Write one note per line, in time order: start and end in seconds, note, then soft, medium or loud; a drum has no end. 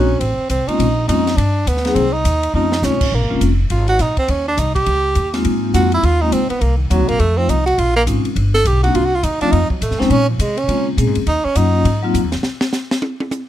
0.00 0.20 A#1 medium
0.00 0.21 C#4 medium
0.19 0.37 A1 medium
0.19 0.49 C4 medium
0.19 kick soft
0.19 ride medium
0.38 muted upright bass stroke soft
0.50 0.66 C2 medium
0.50 0.69 C4 medium
0.50 kick soft
0.50 hi-hat pedal soft
0.50 ride medium
0.67 0.78 G#3 medium
0.67 0.78 A#3 medium
0.67 0.78 C4 medium
0.67 0.78 C#4 medium
0.67 1.08 D#4 medium
0.67 0.79 F4 medium
0.67 muted upright bass stroke soft
0.67 ride soft
0.79 1.07 A#1 medium
0.79 kick soft
0.79 ride medium
1.08 1.36 F2 medium
1.08 1.24 G#3 medium
1.08 1.24 A#3 medium
1.08 1.24 C4 medium
1.08 1.25 C#4 medium
1.08 1.38 D#4 medium
1.08 1.25 F4 medium
1.08 kick soft
1.08 hi-hat pedal medium
1.08 ride medium
1.27 snare medium
1.27 ride soft
1.37 1.65 G2 medium
1.37 1.69 D4 medium
1.37 kick soft
1.37 ride medium
1.66 1.95 D2 medium
1.66 1.97 B3 medium
1.66 kick soft
1.66 hi-hat pedal medium
1.66 ride medium
1.77 snare soft
1.85 1.95 F#3 medium
1.85 1.95 A#3 medium
1.85 1.95 C4 medium
1.85 1.95 D#4 medium
1.85 1.95 G#4 medium
1.85 snare soft
1.85 ride soft
1.95 2.24 C2 medium
1.95 2.14 C4 medium
1.95 kick soft
1.95 ride medium
2.13 2.53 D#4 medium
2.25 2.53 D#2 medium
2.25 kick soft
2.25 hi-hat pedal medium
2.25 ride medium
2.43 ride medium
2.54 2.82 F2 medium
2.54 2.70 A3 medium
2.54 2.70 C4 medium
2.54 2.70 C#4 medium
2.54 2.86 D#4 medium
2.54 2.71 D#4 medium
2.54 2.71 F4 medium
2.72 snare medium
2.82 2.91 C#2 medium
2.82 2.99 A3 medium
2.82 2.99 C4 medium
2.82 2.99 C#4 medium
2.82 3.16 C#4 medium
2.82 3.00 D#4 medium
2.82 3.00 F4 medium
2.82 snare medium
2.82 hi-hat pedal medium
2.91 3.01 C2 medium
3.01 3.11 A1 medium
3.01 kick medium
3.01 crash medium
3.12 3.21 A#1 medium
3.12 3.42 A#3 medium
3.21 3.30 G#1 medium
3.29 3.40 F1 medium
3.29 3.40 G#3 medium
3.29 3.40 A#3 medium
3.29 3.40 C4 medium
3.29 3.40 C#4 medium
3.29 3.40 F4 medium
3.41 3.69 F1 medium
3.41 kick soft
3.41 hi-hat pedal medium
3.41 ride medium
3.70 3.99 G#1 medium
3.70 3.87 F4 medium
3.70 kick soft
3.70 ride medium
3.88 4.03 F#4 loud
3.88 ride soft
3.99 4.16 A#1 medium
3.99 4.18 D#4 medium
3.99 kick soft
3.99 snare soft
3.99 hi-hat pedal soft
3.99 ride medium
4.17 4.32 C4 medium
4.17 muted upright bass stroke soft
4.17 kick medium
4.17 ride soft
4.28 4.57 D#2 medium
4.28 4.47 C#4 medium
4.28 kick soft
4.28 ride medium
4.48 4.61 D4 medium
4.57 4.86 C2 medium
4.57 4.74 D#4 medium
4.57 kick soft
4.57 hi-hat pedal medium
4.57 ride medium
4.75 5.41 G4 loud
4.75 kick medium
4.75 ride soft
4.86 5.15 C#2 medium
4.86 kick soft
4.86 ride medium
5.15 5.44 D#2 medium
5.15 kick soft
5.15 hi-hat pedal soft
5.15 ride medium
5.34 5.72 G#3 medium
5.34 5.72 A#3 medium
5.34 5.72 C4 medium
5.34 5.72 D#4 medium
5.34 5.72 F4 medium
5.34 snare soft
5.34 ride soft
5.45 5.73 G#2 medium
5.45 kick soft
5.45 ride medium
5.74 6.02 F2 medium
5.74 5.90 G#3 medium
5.74 5.90 A#3 medium
5.74 5.90 C4 medium
5.74 5.91 D#4 medium
5.74 5.91 F4 medium
5.74 5.91 F#4 medium
5.74 kick soft
5.74 hi-hat pedal medium
5.74 ride medium
5.92 6.07 E4 medium
5.92 ride soft
6.03 6.31 D#2 medium
6.03 6.23 F4 medium
6.03 kick soft
6.03 ride medium
6.21 6.31 G#3 medium
6.21 6.32 A#3 medium
6.21 6.32 C4 medium
6.21 6.34 D#4 medium
6.21 6.32 D#4 medium
6.21 6.32 F4 medium
6.32 6.49 C#2 medium
6.32 6.49 C4 medium
6.32 kick soft
6.32 hi-hat pedal medium
6.32 ride medium
6.50 6.62 B3 medium
6.50 muted upright bass stroke soft
6.50 ride soft
6.61 6.89 C2 medium
6.61 6.77 A#3 medium
6.61 kick soft
6.61 ride medium
6.77 6.92 D#3 soft
6.90 7.00 D#2 medium
6.90 7.09 F#3 medium
6.90 7.06 F#3 medium
6.90 7.07 A#3 medium
6.90 7.07 C4 medium
6.90 7.07 D#4 medium
6.90 7.07 F#4 medium
6.90 kick soft
6.90 hi-hat pedal medium
6.90 ride medium
7.00 7.09 C2 medium
7.08 7.18 A#1 medium
7.08 7.21 A#3 loud
7.08 ride soft
7.19 7.48 F2 medium
7.19 7.39 A3 medium
7.19 kick soft
7.19 ride medium
7.37 7.47 F3 medium
7.37 7.47 A3 medium
7.37 7.47 C4 medium
7.37 7.51 C4 medium
7.37 7.48 D#4 medium
7.37 7.48 F4 medium
7.49 7.77 C2 medium
7.49 7.65 D#4 medium
7.49 kick soft
7.49 hi-hat pedal medium
7.49 ride medium
7.66 7.80 F#4 loud
7.66 ride soft
7.78 8.06 A#1 medium
7.78 7.95 F4 medium
7.78 kick soft
7.78 ride medium
7.96 8.03 A#3 medium
8.06 8.23 G#1 medium
8.06 8.23 G#3 medium
8.06 8.23 C4 medium
8.06 8.23 C#4 medium
8.06 8.23 D#4 medium
8.06 8.23 F4 medium
8.06 kick soft
8.06 hi-hat pedal medium
8.06 ride medium
8.25 ride soft
8.36 8.64 G1 medium
8.36 kick soft
8.36 ride medium
8.54 8.69 A4 loud
8.54 snare soft
8.65 8.93 B1 medium
8.65 8.83 G4 medium
8.65 kick soft
8.65 hi-hat pedal soft
8.65 ride medium
8.83 8.93 A#3 medium
8.83 8.93 C4 medium
8.83 8.94 D4 medium
8.83 8.93 D#4 medium
8.83 8.97 F#4 medium
8.83 8.93 F#4 medium
8.83 ride soft
8.94 9.22 C2 medium
8.94 9.06 F4 medium
8.94 kick soft
8.94 ride medium
9.05 9.16 F#4 medium
9.15 9.25 F4 medium
9.23 9.40 D#2 medium
9.23 9.41 D#4 medium
9.23 kick soft
9.23 hi-hat pedal medium
9.23 ride medium
9.41 9.51 F3 medium
9.41 9.51 A3 medium
9.41 9.51 C4 medium
9.41 9.53 D4 medium
9.41 9.51 D#4 medium
9.41 9.51 F4 medium
9.41 muted upright bass stroke soft
9.41 ride soft
9.52 9.69 F2 medium
9.52 9.70 D#4 medium
9.52 kick soft
9.52 ride medium
9.70 9.83 F#3 soft
9.70 muted upright bass stroke soft
9.70 kick soft
9.81 9.92 A2 medium
9.81 10.01 A3 medium
9.81 kick soft
9.81 hi-hat pedal soft
9.81 ride medium
9.91 10.00 F2 medium
9.91 snare soft
9.98 10.09 D#2 medium
9.98 10.09 G#3 medium
9.98 10.09 A#3 medium
9.98 10.09 C4 medium
9.98 10.12 C4 medium
9.98 10.09 C#4 medium
9.98 10.10 D#4 medium
9.98 snare soft
10.10 10.38 A#2 loud
10.10 10.28 C#4 loud
10.10 kick soft
10.10 ride medium
10.29 10.42 F3 medium
10.39 10.68 C3 medium
10.39 10.60 G#3 medium
10.39 kick soft
10.39 hi-hat pedal medium
10.39 ride medium
10.57 10.87 C#4 medium
10.57 ride soft
10.68 10.97 C#3 medium
10.68 10.84 G#3 medium
10.68 10.85 A#3 medium
10.68 10.85 C4 medium
10.68 10.85 C#4 medium
10.68 10.85 F4 medium
10.68 kick soft
10.68 ride medium
10.97 11.07 A#2 medium
10.97 11.14 G#3 medium
10.97 11.14 A#3 medium
10.97 11.14 C4 medium
10.97 11.14 C#4 medium
10.97 11.14 G#4 medium
10.97 kick soft
10.97 hi-hat pedal medium
10.97 ride medium
11.07 11.16 G#2 medium
11.15 11.26 F2 medium
11.15 ride soft
11.27 11.43 D#2 medium
11.27 11.46 D#4 medium
11.27 kick soft
11.27 ride medium
11.45 11.58 C#4 medium
11.45 muted upright bass stroke soft
11.55 11.84 F#2 medium
11.55 11.85 F#3 medium
11.55 11.85 A#3 medium
11.55 11.85 C#4 medium
11.55 11.85 D#4 medium
11.55 12.03 D#4 medium
11.55 11.85 F4 medium
11.55 kick soft
11.55 hi-hat pedal medium
11.55 ride medium
11.85 12.13 G#2 medium
11.85 kick soft
11.85 ride medium
12.03 12.13 F#3 medium
12.03 12.13 A#3 medium
12.03 12.14 C4 medium
12.03 12.14 D#4 medium
12.03 12.14 F4 medium
12.14 12.24 F2 loud
12.14 kick soft
12.14 hi-hat pedal medium
12.14 ride medium
12.24 12.34 D#2 medium
12.32 12.43 C2 medium
12.32 snare medium
12.32 ride soft
12.43 snare medium
12.61 snare loud
12.73 snare medium
12.73 hi-hat pedal medium
12.91 snare medium
13.02 high tom loud
13.20 high tom medium
13.31 hi-hat pedal soft
13.31 high tom medium